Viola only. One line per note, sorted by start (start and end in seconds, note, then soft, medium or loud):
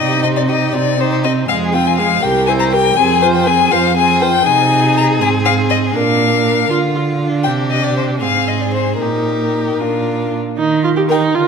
0.00 0.25 D#4 soft
0.24 0.50 C4 soft
0.49 0.75 D#4 soft
0.74 0.99 C4 soft
1.00 1.27 D#4 soft
1.25 1.49 C4 soft
1.49 1.76 G#3 soft
1.74 2.00 C4 soft
1.99 2.23 G#3 soft
2.24 2.50 G4 soft
2.48 2.75 E4 soft
2.73 2.97 G4 soft
2.98 3.24 C4 soft
3.23 3.49 F4 soft
3.47 3.72 C4 soft
3.71 3.96 F4 soft
3.97 4.23 C4 soft
4.22 4.46 F4 soft
4.47 5.22 D#4 medium
5.21 5.95 C4 soft
5.96 6.69 D4 medium
6.70 6.78 F4 soft
6.95 7.03 F4 soft
7.20 8.23 D4 soft
8.22 9.00 C4 soft
9.00 9.82 D#4 soft
9.80 10.38 D4 soft
10.58 10.82 D#4 medium
10.84 10.89 F4 medium
10.96 11.02 G4 medium
11.09 11.36 D#4 medium
11.34 11.48 F4 medium